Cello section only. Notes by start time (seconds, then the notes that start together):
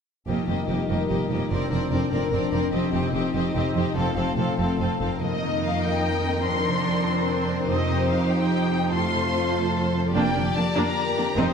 0.28 F2
0.49 F2
0.69 F2
0.90 F2
1.11 F2
1.31 F2
1.51 F2
1.72 F2
1.93 F2
2.12 F2
2.32 F2
2.53 F2
2.73 F2
2.93 F2
3.14 F2
3.34 F2
3.55 F2
3.75 F2
3.95 F2
4.16 F2
4.38 F2
4.58 F2
4.80 F2
5.01 F2
5.22 F2
7.70 F2
10.15 F2
10.35 F2
10.56 F2
10.76 F2
11.18 F2
11.38 F2